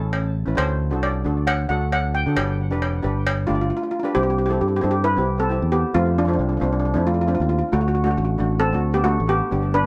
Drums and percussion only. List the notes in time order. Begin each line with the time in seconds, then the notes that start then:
0.13 cowbell
0.58 cowbell
1.03 cowbell
1.47 cowbell
1.92 cowbell
2.37 cowbell
2.82 cowbell
3.27 cowbell